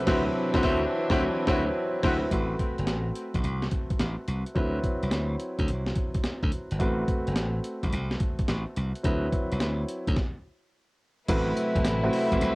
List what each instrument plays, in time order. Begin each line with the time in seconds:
Already playing: string section C3 F#3 B4
0.07 slap bass D2, string section E3 D4, grand piano F#3 C4 E4 B4, horn section C4 E4 F#4 B4, kick, snare, crash
0.53 slap bass D2, grand piano F#3 C4 E4 B4, horn section C4 E4 F#4 B4, kick, snare
0.63 slap bass D2, grand piano F#3 C4 E4 B4, horn section C4 E4 F#4 B4, kick, snare
1.10 slap bass D2, grand piano F#3 C4 E4 B4, horn section C4 E4 F#4 B4, kick, snare
1.47 slap bass D2, grand piano F#3 C4 E4 B4, horn section C4 E4 F#4 B4, kick, snare
2.03 slap bass D2, grand piano F#3 C4 E4 B4, horn section C4 E4 F#4 B4, kick, snare, crash
2.30 slap bass A1, grand piano A3 C4 F#4 B4, kick, closed hi-hat
2.59 kick, closed hi-hat
2.78 slap bass F#1, closed hi-hat
2.87 slap bass A1, snare, closed hi-hat
3.15 closed hi-hat
3.34 slap bass A1, kick, closed hi-hat
3.44 slap bass C2, closed hi-hat
3.62 snare
3.71 kick, closed hi-hat
3.90 kick, closed hi-hat
4.00 slap bass A1, snare, closed hi-hat
4.28 slap bass C2, closed hi-hat
4.46 closed hi-hat
4.55 slap bass D2, grand piano F#3 C4 E4 B4, kick, closed hi-hat
4.84 kick, closed hi-hat
5.03 slap bass C2, closed hi-hat
5.11 slap bass D2, snare, closed hi-hat
5.40 closed hi-hat
5.59 slap bass D2, kick, closed hi-hat
5.68 slap bass C2, closed hi-hat
5.86 snare
5.95 kick, closed hi-hat
6.14 kick, closed hi-hat
6.24 muted slap bass stroke, snare, closed hi-hat
6.43 slap bass D2, kick
6.52 closed hi-hat
6.71 slap bass G1, closed hi-hat
6.79 slap bass A1, grand piano A3 C4 F#4 B4, kick, closed hi-hat
7.08 kick, closed hi-hat
7.27 slap bass F#1, closed hi-hat
7.36 slap bass A1, snare, closed hi-hat
7.64 closed hi-hat
7.83 slap bass A1, kick, closed hi-hat
7.92 slap bass C2, closed hi-hat
8.11 snare
8.20 kick, closed hi-hat
8.39 kick, closed hi-hat
8.48 slap bass A1, snare, closed hi-hat
8.76 slap bass C2, closed hi-hat
8.95 closed hi-hat
9.03 slap bass D2, grand piano F#3 C4 E4 B4, kick, closed hi-hat
9.32 kick, closed hi-hat
9.51 slap bass C2, closed hi-hat
9.60 slap bass D2, snare, closed hi-hat
9.88 closed hi-hat
10.07 slap bass D2, kick, closed hi-hat
10.16 kick, snare
11.29 slap bass A1, string section C3 F#3 A3 E4 B4, grand piano A3 C4 E4 F#4 B4, kick, closed hi-hat, crash, tambourine
11.57 closed hi-hat, tambourine
11.75 slap bass F#1, kick, closed hi-hat
11.85 slap bass A1, snare, closed hi-hat, tambourine
12.03 grand piano A3 C4 E4 F#4 B4
12.13 open hi-hat
12.32 slap bass A1, kick, closed hi-hat
12.41 slap bass C2, closed hi-hat, tambourine